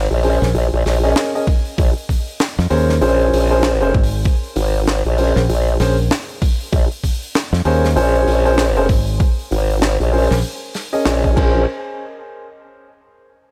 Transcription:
0.11 wobble bass A#1, open hi-hat
0.23 grand piano C#4 G#4 A#4 C5, open hi-hat
0.42 fingered electric bass A#1, snare, open hi-hat
0.54 wobble bass A#1, open hi-hat
0.73 wobble bass A#1, open hi-hat
0.76 open hi-hat
0.82 wobble bass A#1, snare, open hi-hat
0.86 open hi-hat
0.93 open hi-hat
0.97 open hi-hat
1.04 grand piano C#4 G#4 A#4 D#5, open hi-hat
1.16 snare, open hi-hat
1.35 grand piano C#4 G#4 A#4 D#5, open hi-hat
1.47 kick, open hi-hat
1.65 open hi-hat
1.78 wobble bass A#1, kick, open hi-hat
1.98 open hi-hat
2.09 kick, open hi-hat
2.27 open hi-hat
2.40 snare, open hi-hat
2.59 fingered electric bass F2, snare, open hi-hat
2.70 fingered electric bass D#2, grand piano C#4 G#4 A#4 C5, open hi-hat
2.89 snare, open hi-hat
3.01 wobble bass A#1, grand piano C#4 G#4 A#4 C5, open hi-hat
3.19 open hi-hat
3.32 wobble bass A#1, open hi-hat
3.50 grand piano C#4 G#4 A#4 C5, open hi-hat
3.63 snare, open hi-hat
3.81 grand piano C#4 G#4 A#4 C5, open hi-hat
3.94 fingered electric bass G#1, kick
4.03 open hi-hat
4.12 open hi-hat
4.24 kick, open hi-hat
4.43 open hi-hat
4.47 open hi-hat
4.48 open hi-hat
4.50 open hi-hat
4.52 open hi-hat
4.54 wobble bass G#1, open hi-hat
4.56 open hi-hat
4.74 open hi-hat
4.87 snare, open hi-hat
5.05 wobble bass A#1, open hi-hat
5.18 grand piano C#4 G#4 A#4 C5, open hi-hat
5.36 fingered electric bass A#1, snare, open hi-hat
5.49 wobble bass A#1, open hi-hat
5.67 open hi-hat
5.80 fingered electric bass A#1, grand piano C#4 G#4 A#4 C5, snare, open hi-hat
5.98 open hi-hat
6.11 snare, open hi-hat
6.28 open hi-hat
6.42 kick, open hi-hat
6.61 open hi-hat
6.72 wobble bass A#1, kick, open hi-hat
6.92 open hi-hat
7.04 kick, open hi-hat
7.22 open hi-hat
7.34 snare, open hi-hat
7.53 fingered electric bass F2, snare, open hi-hat
7.65 fingered electric bass D#2, grand piano C#4 G#4 A#4 C5, open hi-hat
7.84 snare, open hi-hat
7.96 wobble bass A#1, grand piano C#4 G#4 A#4 C5, open hi-hat
8.15 open hi-hat
8.27 wobble bass A#1, open hi-hat
8.45 grand piano C#4 G#4 A#4 C5, open hi-hat
8.54 snare, open hi-hat
8.59 open hi-hat
8.65 open hi-hat
8.76 grand piano C#4 G#4 A#4 C5, open hi-hat
8.89 fingered electric bass G#1, kick, open hi-hat
9.07 open hi-hat
9.20 kick, open hi-hat
9.39 open hi-hat
9.51 wobble bass G#1, open hi-hat
9.70 open hi-hat
9.82 snare, open hi-hat
10.00 wobble bass A#1, open hi-hat
10.12 grand piano C#4 G#4 A#4 C5, open hi-hat
10.18 open hi-hat
10.23 open hi-hat
10.27 snare, open hi-hat
10.31 fingered electric bass A#1, open hi-hat
10.35 open hi-hat
10.38 open hi-hat
10.41 open hi-hat
10.44 open hi-hat
10.74 snare, open hi-hat
10.93 grand piano C#4 G#4 A#4 D#5, open hi-hat
11.05 wobble bass A#1, snare, open hi-hat
11.23 grand piano C#4 G#4 A#4 D#5, kick, open hi-hat
11.36 wobble bass A#1, grand piano C#4 G#4 A#4 C5, kick, crash

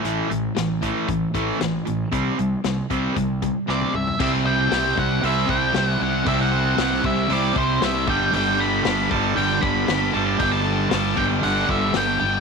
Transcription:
0.03 fingered electric bass A1, distorted electric guitar A2 E3 A3, closed hi-hat
0.30 fingered electric bass A1, distorted electric guitar A2 E3, closed hi-hat
0.55 fingered electric bass A1, distorted electric guitar A2 E3, snare, closed hi-hat
0.81 distorted electric guitar A2 E3 A3, kick, closed hi-hat
1.08 fingered electric bass A1, distorted electric guitar A2 E3, kick, closed hi-hat
1.34 fingered electric bass A1, distorted electric guitar A2 E3 A3, kick, closed hi-hat
1.60 fingered electric bass A1, distorted electric guitar A2 E3, snare, closed hi-hat
1.86 fingered electric bass A1, distorted electric guitar A2 E3, closed hi-hat
2.12 fingered electric bass C2, distorted electric guitar C3 G3 C4, kick, closed hi-hat
2.39 fingered electric bass C2, distorted electric guitar C3 G3, closed hi-hat
2.64 fingered electric bass C2, distorted electric guitar C3 G3, snare, closed hi-hat
2.90 fingered electric bass C2, distorted electric guitar C3 G3 C4, kick, closed hi-hat
3.17 fingered electric bass C2, distorted electric guitar C3 G3, kick, closed hi-hat
3.42 distorted electric guitar C3 G3, kick, closed hi-hat
3.67 fingered electric bass C2, distorted electric guitar C3 G3 C4, lead electric guitar D5, snare
3.82 high tom
3.94 fingered electric bass C2, distorted electric guitar C3 G3, lead electric guitar E5, mid tom
4.07 floor tom
4.20 fingered electric bass C2, distorted electric guitar C3 G3 C4 E4 G4 C5, lead electric guitar E5, kick, crash
4.45 distorted electric guitar C4 E4 G4 C5, lead electric guitar G5
4.71 fingered electric bass C2, distorted electric guitar C4 E4 G4 C5, snare, open hi-hat
4.98 fingered electric bass C2, lead electric guitar F#5, kick
5.23 fingered electric bass C2, distorted electric guitar C3 G3 C4 E4 G4 C5, lead electric guitar E5, open hi-hat
5.49 fingered electric bass C2, distorted electric guitar C4 E4 G4 C5, lead electric guitar G5, kick
5.74 fingered electric bass C2, distorted electric guitar C4 E4 G4 C5, snare, open hi-hat
5.89 lead electric guitar F#5
6.00 fingered electric bass C2, distorted electric guitar C4 E4 G4 C5, lead electric guitar F#5
6.26 fingered electric bass C2, distorted electric guitar C3 G3 C4 E4 G4 C5, lead electric guitar E5, kick, open hi-hat
6.41 lead electric guitar F#5
6.52 distorted electric guitar C4 E4 G4 C5
6.77 fingered electric bass C2, distorted electric guitar C4 E4 G4 C5, lead electric guitar F#5, snare, open hi-hat
7.04 fingered electric bass C2, lead electric guitar E5, kick
7.28 fingered electric bass C2, distorted electric guitar C3 G3 C4 E4 G4 C5, open hi-hat
7.33 lead electric guitar D5
7.55 fingered electric bass C2, distorted electric guitar C4 E4 G4 C5, lead electric guitar C5, kick
7.81 fingered electric bass C2, distorted electric guitar C4 E4 G4 C5, lead electric guitar E5, snare, open hi-hat
8.06 fingered electric bass G1, distorted electric guitar G2 D3 G3 B3 D4 G4, lead electric guitar G5, kick
8.31 fingered electric bass G1, distorted electric guitar G2 D3 G3 B3 D4 G4, lead electric guitar G5, open hi-hat
8.57 distorted electric guitar G3 B3 D4 G4, lead electric guitar B5
8.83 fingered electric bass G1, distorted electric guitar G3 B3 D4 G4, snare, open hi-hat
9.11 fingered electric bass G1, overdriven electric guitar G2 D3 G3, lead electric guitar A5, kick
9.35 fingered electric bass G1, distorted electric guitar G2 D3 G3 B3 D4 G4, lead electric guitar G5, open hi-hat
9.61 fingered electric bass G1, distorted electric guitar G3 B3 D4 G4, lead electric guitar B5, kick
9.87 fingered electric bass G1, distorted electric guitar G3 B3 D4 G4, snare, open hi-hat
10.13 fingered electric bass G1, overdriven electric guitar G2 D3, distorted electric guitar G3 B3 D4 G4, lead electric guitar A5
10.39 fingered electric bass G1, distorted electric guitar G2 D3 G3 B3 D4 G4, lead electric guitar G5, kick, open hi-hat
10.51 lead electric guitar A5
10.64 distorted electric guitar G3 B3 D4 G4
10.90 fingered electric bass G1, distorted electric guitar G3 B3 D4 G4, lead electric guitar A5, snare, open hi-hat
11.16 fingered electric bass G1, overdriven electric guitar G2 D3 G3, lead electric guitar G5, kick
11.41 fingered electric bass G1, distorted electric guitar G2 D3 G3 B3 D4 G4, lead electric guitar F#5, open hi-hat
11.67 fingered electric bass G1, distorted electric guitar G3 B3 D4 G4, lead electric guitar E5, kick
11.93 fingered electric bass G1, distorted electric guitar G3 B3 D4 G4, lead electric guitar G5, snare, open hi-hat
12.19 fingered electric bass G1, distorted electric guitar G3 B3 D4 G4, lead electric guitar G5

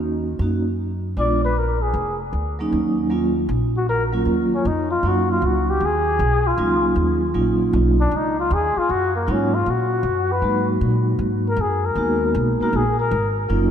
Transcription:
Already playing: upright bass D#2, vibraphone A#3 C#4 D#4 F#4
0.39 upright bass F#2, vibraphone A#3 C#4 D#4 F#4
1.17 upright bass A#1, vibraphone G#3 B3 D4 F4, muted trumpet D5
1.45 muted trumpet B4
1.58 muted trumpet A#4
1.82 muted trumpet G#4
1.94 upright bass F1
2.33 upright bass D2
2.59 vibraphone F#3 A#3 C#4 D#4
2.72 upright bass D#2
3.10 vibraphone F#3 A#3 C#4 F4
3.49 upright bass A#1
3.77 muted trumpet F#4
3.89 muted trumpet A#4
4.12 vibraphone F#3 A#3 C#4 F4
4.25 upright bass D#2
4.55 muted trumpet C#4
4.65 upright bass F2, muted trumpet D#4
4.91 muted trumpet F4
5.03 upright bass F#2, vibraphone F#3 A#3 C#4 D#4 F4
5.08 muted trumpet F#4
5.32 muted trumpet F4
5.42 upright bass C#2
5.46 muted trumpet F#4
5.70 muted trumpet G4
5.80 upright bass D#2
5.85 muted trumpet G#4
6.19 upright bass B1
6.47 muted trumpet F4
6.58 upright bass C#2, vibraphone F#3 A#3 C#4 D#4 F4
6.96 upright bass D#2
7.34 upright bass A#1, vibraphone F#3 A#3 C#4 D#4 F4
7.73 upright bass B1, vibraphone F#3 A#3 C#4 D#4 F4
8.01 muted trumpet D4
8.11 upright bass C#2
8.17 muted trumpet D#4
8.40 muted trumpet F4
8.51 upright bass D#2, muted trumpet G#4
8.77 muted trumpet F4, muted upright bass stroke
8.89 upright bass F#2, muted trumpet F#4
9.16 muted trumpet A#3
9.27 upright bass G#2, vibraphone F#3 A#3 C#4 D#4 F4
9.31 muted trumpet C#4
9.55 muted trumpet F4
9.66 upright bass A#2, muted trumpet F#4
10.03 upright bass F#2
10.32 muted trumpet B4
10.42 upright bass G#2, vibraphone F#3 G#3 A#3 D#4 F#4
10.81 upright bass A#2
11.19 upright bass G#2
11.49 muted trumpet A#4
11.56 upright bass F#2
11.61 muted trumpet G#4
11.86 muted trumpet A#4
11.95 upright bass D#2, vibraphone G#3 A#3 B3 D#4 F#4
12.35 upright bass B1
12.60 vibraphone G#3 A#3 B3 D#4 F#4, muted trumpet A#4, muted upright bass stroke
12.73 upright bass A#1, muted trumpet G#4
13.00 muted trumpet A#4
13.11 upright bass G#1
13.49 upright bass F#1, vibraphone F#3 A#3 C#4 D#4 F4

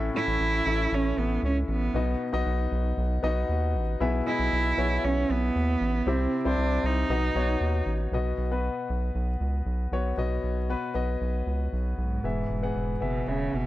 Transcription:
Already playing: analog synth bass A1, grand piano A2
0.15 grand piano C#4 E4 A4 E5, cello E4
0.27 analog synth bass A1
0.40 analog synth bass A1
0.66 analog synth bass A1, grand piano C#4 E4 A4 E5
0.92 analog synth bass A1, cello C#4
1.18 analog synth bass A1, cello B3
1.43 analog synth bass C#2, cello C#4
1.68 analog synth bass A1, cello B3
1.94 analog synth bass B1, grand piano B2 B3 D#4 F#4 D#5
2.33 analog synth bass B1, grand piano B3 D#4 F#4 D#5
2.46 analog synth bass B1
2.72 analog synth bass B1
2.97 analog synth bass B1
3.23 analog synth bass B1, grand piano B3 D#4 F#4 D#5
3.49 analog synth bass D#2
3.75 analog synth bass A1
4.00 analog synth bass B1, grand piano B2 B3 E4 G#4 E5
4.27 grand piano B3 E4 G#4 D#5, cello E4
4.39 analog synth bass B1
4.53 analog synth bass B1
4.78 analog synth bass B1, grand piano B3 E4 G#4 C#5
5.04 analog synth bass B1, cello C#4
5.30 analog synth bass B1, cello B3
5.56 analog synth bass D#2
5.81 analog synth bass A1
6.06 analog synth bass C2, grand piano C3 C4 E4 G4 E5, cello C4
6.45 analog synth bass C2, grand piano C4 E4 G4 C5, cello D4
6.58 analog synth bass C2
6.83 analog synth bass C2, cello D#4
7.09 analog synth bass B1, grand piano B2 B3 D#4 F#4 D#5
7.35 analog synth bass B1, grand piano B3 D#4 F#4 C#5
7.61 analog synth bass D#2
7.86 analog synth bass A1
8.12 analog synth bass B1, grand piano B2 B3 F#4 D#5
8.38 analog synth bass B1
8.51 grand piano B3 F#4 B4
8.90 analog synth bass B1
9.15 analog synth bass B1
9.40 analog synth bass C#2
9.66 analog synth bass B1
9.92 analog synth bass B1, grand piano B3 F#4 C#5
10.17 analog synth bass B1, grand piano B2 B3 F#4 D#5
10.43 analog synth bass B1
10.70 grand piano B3 F#4 B4
10.94 analog synth bass B1, grand piano B3 F#4 D#5
11.21 analog synth bass B1
11.47 analog synth bass C#2
11.73 analog synth bass B1
11.98 analog synth bass B1, cello G#2
12.24 analog synth bass E1, grand piano E3 B3 G#4 E5
12.49 analog synth bass E1
12.62 grand piano B3 G#4 F#5
12.75 analog synth bass E1
13.01 analog synth bass F#1, cello B2, grand piano B3 G#4 E5
13.27 analog synth bass E1, cello C#3, grand piano B3 G#4 E5
13.53 analog synth bass F#1, cello B2

